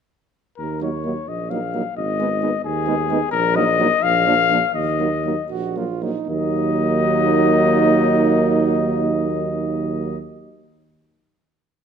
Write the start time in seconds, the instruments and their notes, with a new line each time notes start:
0.58 tuba D#2, trumpet A#4
0.81 trombone F#3, french horn A#3, flugelhorn D#4, trumpet C#5
1.04 trombone F#3, french horn A#3, flugelhorn D#4
1.28 tuba A#1, trumpet D#5
1.50 trombone F#3, french horn A#3, flugelhorn D#4, trumpet F5
1.74 trombone F#3, french horn A#3, flugelhorn D#4
1.97 tuba G#1, trumpet D#5
2.19 trombone G#3, french horn B3, flugelhorn D#4
2.41 trombone G#3, french horn B3, flugelhorn D#4
2.64 tuba D#2, trumpet G#4
2.87 trombone G#3, french horn B3, flugelhorn D#4
3.09 trombone G#3, french horn B3, flugelhorn D#4
3.31 tuba A#1, trumpet A#4
3.54 trombone F#3, french horn A#3, flugelhorn D#4, trumpet D#5
3.78 trombone F#3, french horn A#3, flugelhorn D#4
4.03 tuba A#1, trumpet F5
4.25 trombone F3, french horn A#3, flugelhorn D4
4.50 trombone F3, french horn A#3, flugelhorn D4
4.74 tuba D#2, trumpet D#5
4.99 trombone F#3, french horn A#3, flugelhorn D#4
5.24 trombone F#3, french horn A#3, flugelhorn D#4
5.50 tuba A#1, flugelhorn F#4
5.75 trombone F#3, french horn A#3, flugelhorn F4
6.01 trombone F#3, french horn A#3, flugelhorn D#4
6.27 tuba D#2, trombone F#3, french horn A#3, flugelhorn D#4, trumpet D#5